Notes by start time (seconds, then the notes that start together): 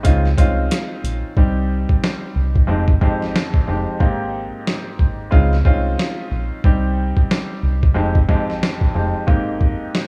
0.03 C#2 C#3 G#3 C4 D#4 F4, kick, closed hi-hat
0.25 snare
0.37 C2 G#3 C4 C#4 D#4 F4, kick, closed hi-hat
0.71 snare, closed hi-hat
1.04 A#1, closed hi-hat
1.37 C2 G3 C4 D#4 G4, kick
1.89 kick
2.04 snare
2.36 C2
2.56 kick
2.67 F1 F2 G#3 C4 D#4 G4
2.88 kick
3.01 G#1 F2 G#3 C4 D#4 G4, kick
3.22 snare
3.36 snare
3.54 kick
3.67 F1 F2 G#3 C4 D#4 G4
3.99 G#1 G#2 A#3 C4 D#4 G4, kick
4.67 snare
4.99 G#1, kick
5.31 C#2 C#3 G#3 C4 D#4 F4, kick
5.53 snare
5.65 C2 G#3 C4 C#4 D#4 F4, kick
5.99 snare
6.31 A#1
6.64 C2 G3 C4 D#4 G4, kick
7.17 kick
7.31 snare
7.63 C2
7.83 kick
7.95 F1 F2 G#3 C4 D#4 G4
8.15 kick
8.29 G#1 F2 G#3 C4 D#4 G4, kick
8.50 snare
8.63 snare
8.81 kick
8.95 F1 F2 G#3 C4 D#4 G4
9.27 G#1 G#2 A#3 C4 D#4 G4, kick
9.61 kick
9.95 snare